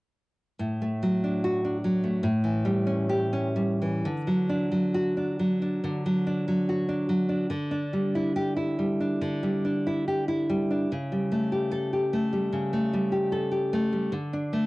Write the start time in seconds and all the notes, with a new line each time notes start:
0.59 A2
0.82 A3
1.03 F#3
1.24 D4
1.44 F#4
1.65 D4
1.84 F#3
2.04 A3
2.23 A2
2.44 E3
2.65 G3
2.87 C#4
3.09 G4
3.33 C#4
3.56 G3
3.82 E3
4.05 D3
4.27 F#3
4.49 D4
4.71 F#3
4.94 F#4
5.17 D4
5.39 F#3
5.62 D4
5.84 D3
6.06 F#3
6.27 D4
6.48 F#3
6.69 F#4
6.89 D4
7.09 F#3
7.29 D4
7.50 D3
7.71 D4
7.93 G3
8.15 E4
8.36 G4
8.56 E4
8.78 G3
9.00 D4
9.21 D3
9.43 G3
9.65 D4
9.87 E4
10.08 G4
10.28 E4
10.49 G3
10.71 D4
10.92 C#3
11.12 G3
11.32 A3
11.52 G4
11.72 A4
11.93 G4
12.13 A3
12.33 G3
12.53 C#3
12.73 A3
12.94 G3
13.12 G4
13.32 A4
13.51 G4
13.73 A3
13.92 G3
14.12 D3
14.33 D4
14.53 A3